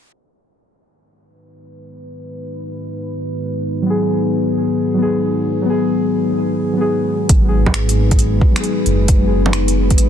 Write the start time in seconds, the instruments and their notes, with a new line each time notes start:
0.12 ambient pad G#3 D#4 F#4 B4
3.82 synth keys F#3
3.86 synth keys B3
3.90 synth keys G#4
4.94 synth keys F#3
4.98 synth keys B3
5.02 synth keys G#4
5.62 synth keys F#3
5.66 synth keys B3 G#4
6.73 synth keys F#3
6.77 synth keys B3 G#4
7.29 detuned saw bass G#1, ambient pad G#3 D#4 F#4 B4, kick, closed hi-hat
7.41 synth keys F#3 B3
7.48 synth keys G#4
7.66 kick, low bongo
7.74 finger snap, closed hi-hat
7.89 closed hi-hat
8.11 kick, closed hi-hat
8.19 closed hi-hat
8.41 kick
8.52 synth keys F#3
8.56 synth keys B3 G#4, finger snap, closed hi-hat
8.64 closed hi-hat
8.86 detuned saw bass F#1, closed hi-hat
9.08 kick, closed hi-hat
9.19 synth keys F#3 B3
9.27 synth keys G#4
9.46 low bongo
9.53 finger snap, closed hi-hat
9.68 closed hi-hat
9.90 kick, closed hi-hat
9.98 detuned saw bass G#1, closed hi-hat